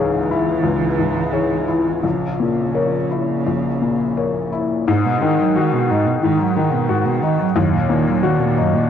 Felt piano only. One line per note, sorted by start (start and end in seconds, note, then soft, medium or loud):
0.00 0.61 C#2 medium
0.00 0.19 G#2 soft
0.00 0.28 G#4 soft
0.00 0.28 C#5 soft
0.31 0.85 E4 soft
0.63 1.99 C#2 soft
0.98 1.54 G#2 soft
1.33 1.64 G#4 soft
1.33 1.64 C#5 soft
1.68 2.03 E4 soft
2.03 3.42 A#1 soft
2.40 2.96 A#2 soft
2.74 3.07 A#4 soft
2.74 3.07 C#5 soft
3.11 3.67 E4 soft
3.47 4.83 A#1 soft
3.82 4.38 A#2 soft
4.18 4.49 A#4 soft
4.18 4.49 C#5 soft
4.53 4.87 E4 soft
4.88 6.19 G#2 medium
5.22 5.76 D#3 medium
5.56 6.09 F#4 medium
5.90 6.43 D#4 medium
6.23 7.52 G#2 medium
6.56 7.09 D#3 medium
6.89 7.43 F#4 medium
7.23 7.56 D#4 medium
7.56 8.85 D#2 medium
7.90 8.43 A#2 medium
8.23 8.76 F#4 medium
8.57 8.90 D#4 medium